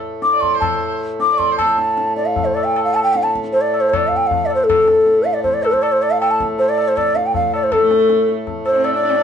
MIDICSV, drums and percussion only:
0, 0, Header, 1, 2, 480
1, 0, Start_track
1, 0, Tempo, 387597
1, 50, Time_signature, 4, 2, 24, 8
1, 5809, Tempo, 377596
1, 11581, End_track
2, 0, Start_track
2, 0, Title_t, "Tabla"
2, 273, Note_on_c, 9, 62, 71
2, 397, Note_off_c, 9, 62, 0
2, 525, Note_on_c, 9, 63, 71
2, 525, Note_on_c, 9, 64, 66
2, 649, Note_off_c, 9, 63, 0
2, 649, Note_off_c, 9, 64, 0
2, 766, Note_on_c, 9, 60, 91
2, 766, Note_on_c, 9, 64, 73
2, 889, Note_off_c, 9, 60, 0
2, 889, Note_off_c, 9, 64, 0
2, 1483, Note_on_c, 9, 62, 73
2, 1607, Note_off_c, 9, 62, 0
2, 1726, Note_on_c, 9, 63, 69
2, 1726, Note_on_c, 9, 64, 66
2, 1850, Note_off_c, 9, 63, 0
2, 1850, Note_off_c, 9, 64, 0
2, 1965, Note_on_c, 9, 60, 101
2, 1965, Note_on_c, 9, 64, 93
2, 2089, Note_off_c, 9, 60, 0
2, 2089, Note_off_c, 9, 64, 0
2, 2205, Note_on_c, 9, 62, 82
2, 2329, Note_off_c, 9, 62, 0
2, 2445, Note_on_c, 9, 62, 84
2, 2569, Note_off_c, 9, 62, 0
2, 2678, Note_on_c, 9, 62, 60
2, 2802, Note_off_c, 9, 62, 0
2, 2925, Note_on_c, 9, 63, 84
2, 2925, Note_on_c, 9, 64, 74
2, 3049, Note_off_c, 9, 63, 0
2, 3049, Note_off_c, 9, 64, 0
2, 3179, Note_on_c, 9, 60, 63
2, 3303, Note_off_c, 9, 60, 0
2, 3422, Note_on_c, 9, 60, 79
2, 3546, Note_off_c, 9, 60, 0
2, 3669, Note_on_c, 9, 60, 66
2, 3793, Note_off_c, 9, 60, 0
2, 3903, Note_on_c, 9, 62, 85
2, 4027, Note_off_c, 9, 62, 0
2, 4029, Note_on_c, 9, 62, 59
2, 4152, Note_off_c, 9, 62, 0
2, 4154, Note_on_c, 9, 37, 64
2, 4262, Note_on_c, 9, 62, 71
2, 4278, Note_off_c, 9, 37, 0
2, 4385, Note_on_c, 9, 63, 81
2, 4386, Note_off_c, 9, 62, 0
2, 4509, Note_off_c, 9, 63, 0
2, 4629, Note_on_c, 9, 60, 64
2, 4753, Note_off_c, 9, 60, 0
2, 4872, Note_on_c, 9, 60, 85
2, 4872, Note_on_c, 9, 64, 75
2, 4996, Note_off_c, 9, 60, 0
2, 4996, Note_off_c, 9, 64, 0
2, 5106, Note_on_c, 9, 64, 61
2, 5230, Note_off_c, 9, 64, 0
2, 5337, Note_on_c, 9, 63, 84
2, 5337, Note_on_c, 9, 64, 73
2, 5460, Note_off_c, 9, 63, 0
2, 5460, Note_off_c, 9, 64, 0
2, 5575, Note_on_c, 9, 60, 62
2, 5699, Note_off_c, 9, 60, 0
2, 5816, Note_on_c, 9, 60, 114
2, 5816, Note_on_c, 9, 64, 92
2, 5943, Note_off_c, 9, 60, 0
2, 5943, Note_off_c, 9, 64, 0
2, 6046, Note_on_c, 9, 62, 86
2, 6173, Note_off_c, 9, 62, 0
2, 6282, Note_on_c, 9, 62, 84
2, 6409, Note_off_c, 9, 62, 0
2, 6522, Note_on_c, 9, 62, 60
2, 6649, Note_off_c, 9, 62, 0
2, 6763, Note_on_c, 9, 63, 87
2, 6763, Note_on_c, 9, 64, 74
2, 6890, Note_off_c, 9, 63, 0
2, 6890, Note_off_c, 9, 64, 0
2, 7022, Note_on_c, 9, 60, 67
2, 7137, Note_on_c, 9, 37, 60
2, 7150, Note_off_c, 9, 60, 0
2, 7257, Note_on_c, 9, 60, 82
2, 7265, Note_off_c, 9, 37, 0
2, 7384, Note_off_c, 9, 60, 0
2, 7503, Note_on_c, 9, 60, 66
2, 7630, Note_off_c, 9, 60, 0
2, 7750, Note_on_c, 9, 60, 80
2, 7877, Note_off_c, 9, 60, 0
2, 7987, Note_on_c, 9, 37, 67
2, 8114, Note_off_c, 9, 37, 0
2, 8222, Note_on_c, 9, 63, 82
2, 8349, Note_off_c, 9, 63, 0
2, 8463, Note_on_c, 9, 60, 65
2, 8591, Note_off_c, 9, 60, 0
2, 8708, Note_on_c, 9, 60, 83
2, 8708, Note_on_c, 9, 64, 76
2, 8835, Note_off_c, 9, 60, 0
2, 8835, Note_off_c, 9, 64, 0
2, 8941, Note_on_c, 9, 62, 67
2, 9069, Note_off_c, 9, 62, 0
2, 9181, Note_on_c, 9, 63, 85
2, 9181, Note_on_c, 9, 64, 76
2, 9308, Note_off_c, 9, 63, 0
2, 9308, Note_off_c, 9, 64, 0
2, 9426, Note_on_c, 9, 60, 63
2, 9553, Note_off_c, 9, 60, 0
2, 9658, Note_on_c, 9, 60, 107
2, 9658, Note_on_c, 9, 64, 97
2, 9785, Note_off_c, 9, 60, 0
2, 9785, Note_off_c, 9, 64, 0
2, 9899, Note_on_c, 9, 62, 86
2, 10026, Note_off_c, 9, 62, 0
2, 10137, Note_on_c, 9, 62, 86
2, 10264, Note_off_c, 9, 62, 0
2, 10379, Note_on_c, 9, 62, 64
2, 10506, Note_off_c, 9, 62, 0
2, 10614, Note_on_c, 9, 63, 86
2, 10614, Note_on_c, 9, 64, 75
2, 10741, Note_off_c, 9, 63, 0
2, 10741, Note_off_c, 9, 64, 0
2, 10850, Note_on_c, 9, 60, 67
2, 10977, Note_off_c, 9, 60, 0
2, 11088, Note_on_c, 9, 60, 84
2, 11215, Note_off_c, 9, 60, 0
2, 11327, Note_on_c, 9, 60, 66
2, 11454, Note_off_c, 9, 60, 0
2, 11581, End_track
0, 0, End_of_file